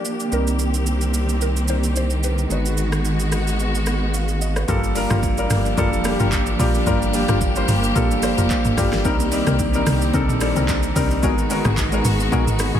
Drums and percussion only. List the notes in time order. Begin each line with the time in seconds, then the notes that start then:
0.05 shaker
0.20 shaker
0.32 shaker
0.47 shaker
0.59 shaker
0.74 shaker
0.87 shaker
1.01 shaker
1.14 shaker
1.29 shaker
1.41 shaker
1.57 shaker
1.68 shaker
1.84 shaker
1.96 shaker
2.10 shaker
2.23 shaker
2.38 shaker
2.50 shaker
2.66 shaker
2.78 shaker
2.92 cross-stick, shaker
3.05 shaker
3.20 shaker
3.32 cross-stick, shaker
3.47 shaker
3.60 shaker
3.75 shaker
3.86 cross-stick, shaker
4.14 shaker
4.28 shaker
4.42 shaker
4.56 cross-stick, shaker
4.68 kick, shaker
4.84 shaker
4.95 open hi-hat, shaker
5.10 cross-stick, shaker
5.23 kick, shaker
5.38 shaker
5.50 cross-stick, open hi-hat, shaker
5.65 shaker
5.78 kick, shaker
5.93 shaker
6.04 cross-stick, open hi-hat, shaker
6.20 shaker
6.32 kick, clap, shaker
6.46 shaker
6.60 kick, open hi-hat, shaker
6.75 shaker
6.87 kick, shaker
7.02 shaker
7.14 open hi-hat, shaker
7.29 cross-stick, shaker
7.41 kick, shaker
7.56 shaker
7.68 open hi-hat, shaker
7.84 shaker
7.96 kick, shaker
8.11 shaker
8.22 cross-stick, open hi-hat, shaker
8.38 shaker
8.50 kick, clap, shaker
8.65 shaker
8.78 kick, cross-stick, open hi-hat, shaker
8.92 cross-stick, snare, shaker
9.05 kick, shaker
9.20 shaker
9.32 open hi-hat, shaker
9.47 cross-stick, shaker
9.59 kick, shaker
9.74 shaker
9.86 cross-stick, open hi-hat, shaker
10.02 shaker
10.14 kick, shaker
10.29 shaker
10.41 cross-stick, open hi-hat, shaker
10.56 shaker
10.69 kick, clap, shaker
10.83 shaker
10.96 kick, open hi-hat, shaker
11.11 shaker
11.23 kick, shaker
11.38 shaker
11.50 open hi-hat, shaker
11.65 cross-stick, shaker
11.77 kick, clap, shaker
11.92 shaker
12.05 open hi-hat, shaker
12.20 shaker
12.32 kick, shaker
12.48 shaker
12.59 cross-stick, open hi-hat, shaker